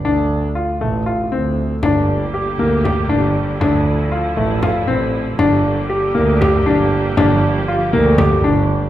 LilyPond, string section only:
\new Staff \with { instrumentName = "String section" } { \time 7/8 \key g \dorian \tempo 4 = 118 << { r2. r8 | <bes g'>2.~ <bes g'>8 | <f e'>2.~ <f e'>8 | <bes g'>2.~ <bes g'>8~ |
<bes g'>2.~ <bes g'>8 | } \\ { r2. r8 | d2.~ d8~ | d2.~ d8 | d2.~ d8 |
f2.~ f8 | } >> }